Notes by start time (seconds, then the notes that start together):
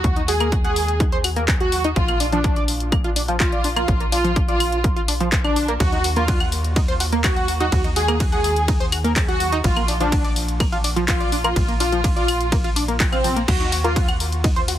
Already playing: F#4
0.04 D#2, kick, closed hi-hat
0.16 D#4 D#5, closed hi-hat
0.28 F#4 G#4 F#5, open hi-hat
0.40 A#3 A#4, closed hi-hat, claves
0.52 F#4 F#5, kick, closed hi-hat
0.64 G#4 F#5 F#6, closed hi-hat
0.76 open hi-hat
0.88 closed hi-hat
1.00 D#4 D#5, kick, closed hi-hat
1.12 C5 C6, closed hi-hat
1.24 F#4 F#5, open hi-hat, claves
1.36 A#3 A#4, closed hi-hat
1.48 kick, clap, closed hi-hat
1.60 F#4 F#5 F#6, closed hi-hat
1.72 F#4 F#5, open hi-hat
1.84 D#4 D#5, closed hi-hat
1.96 A#1 F4, kick, closed hi-hat
2.08 A#3 A#4, closed hi-hat, claves
2.20 D4 D5, open hi-hat
2.32 F3 D4 F4, closed hi-hat
2.44 D4 D5, kick, closed hi-hat
2.56 D5 D6, closed hi-hat
2.68 open hi-hat
2.80 closed hi-hat
2.92 A#3 A#4, kick, closed hi-hat, claves
3.04 F4 F5, closed hi-hat
3.16 D4 D5, open hi-hat
3.28 F3 F4, closed hi-hat
3.40 F4, kick, clap, closed hi-hat
3.52 D5 D6, closed hi-hat
3.64 D4 D5, open hi-hat
3.76 A#3 F4 A#4, closed hi-hat, claves
3.88 A#1, kick, closed hi-hat
4.00 A#3 A#4, closed hi-hat
4.12 D4 F4 D5, open hi-hat
4.24 F3 F4, closed hi-hat
4.36 D4 D5, kick, closed hi-hat
4.48 F4 D5 D6, closed hi-hat
4.60 open hi-hat, claves
4.72 closed hi-hat
4.84 A#3 A#4, kick, closed hi-hat
4.96 F4 F5, closed hi-hat
5.08 D4 D5, open hi-hat
5.20 F3 F4, closed hi-hat
5.32 kick, clap, closed hi-hat
5.44 D4 D5 D6, closed hi-hat, claves
5.56 D4 D5, open hi-hat
5.68 A#3 A#4, closed hi-hat
5.80 D#2 F#4, kick, closed hi-hat, ride
5.92 D#4 D#5, closed hi-hat
6.04 F#4 F#5, open hi-hat
6.16 A#3 F4 A#4, closed hi-hat
6.28 F#4 F#5, kick, closed hi-hat, ride
6.40 F#5 F#6, closed hi-hat, claves
6.52 open hi-hat
6.64 closed hi-hat
6.76 D#4 D#5, kick, closed hi-hat, ride
6.88 C5 C6, closed hi-hat
7.00 F#4 F#5, open hi-hat
7.12 A#3 A#4, closed hi-hat
7.24 F#4, kick, clap, closed hi-hat, ride, claves
7.36 F#5 F#6, closed hi-hat
7.48 F#4 F#5, open hi-hat
7.60 D#4 F#4 D#5, closed hi-hat
7.72 D#2, kick, closed hi-hat, ride
7.84 D#4 D#5, closed hi-hat
7.96 F#4 G#4 F#5, open hi-hat
8.08 A#3 A#4, closed hi-hat, claves
8.20 F#4 F#5, kick, closed hi-hat, ride
8.32 G#4 F#5 F#6, closed hi-hat
8.44 open hi-hat
8.56 closed hi-hat
8.68 D#4 D#5, kick, closed hi-hat, ride
8.80 C5 C6, closed hi-hat
8.92 F#4 F#5, open hi-hat, claves
9.04 A#3 A#4, closed hi-hat
9.16 kick, clap, closed hi-hat, ride
9.28 F#4 F#5 F#6, closed hi-hat
9.40 F#4 F#5, open hi-hat
9.52 D#4 D#5, closed hi-hat
9.64 A#1 F4, kick, closed hi-hat, ride
9.76 A#3 A#4, closed hi-hat, claves
9.88 D4 D5, open hi-hat
10.00 F3 D4 F4, closed hi-hat
10.12 D4 D5, kick, closed hi-hat, ride
10.24 D5 D6, closed hi-hat
10.36 open hi-hat
10.48 closed hi-hat
10.60 A#3 A#4, kick, closed hi-hat, ride, claves
10.72 F4 F5, closed hi-hat
10.84 D4 D5, open hi-hat
10.96 F3 F4, closed hi-hat
11.08 F4, kick, clap, closed hi-hat, ride
11.20 D5 D6, closed hi-hat
11.32 D4 D5, open hi-hat
11.44 A#3 F4 A#4, closed hi-hat, claves
11.56 A#1, kick, closed hi-hat, ride
11.68 A#3 A#4, closed hi-hat
11.80 D4 F4 D5, open hi-hat
11.92 F3 F4, closed hi-hat
12.04 D4 D5, kick, closed hi-hat, ride
12.16 F4 D5 D6, closed hi-hat
12.28 open hi-hat, claves
12.40 closed hi-hat
12.52 A#3 A#4, kick, closed hi-hat, ride
12.64 F4 F5, closed hi-hat
12.76 D4 D5, open hi-hat
12.88 A#3 A#4, closed hi-hat
13.00 kick, clap, closed hi-hat, ride
13.12 C4 F4 F5, closed hi-hat, claves
13.24 F3 F4, open hi-hat
13.36 A#3 A#4, closed hi-hat
13.48 D#2 F#4, kick, closed hi-hat, ride, crash
13.60 D#4 D#5, closed hi-hat
13.72 F#4 F#5, open hi-hat
13.84 A#3 F4 A#4, closed hi-hat
13.96 F#4 F#5, kick, closed hi-hat, ride
14.08 F#5 F#6, closed hi-hat, claves
14.20 open hi-hat
14.32 closed hi-hat
14.44 D#4 D#5, kick, closed hi-hat, ride
14.56 C5 C6, closed hi-hat
14.68 F#4 F#5, open hi-hat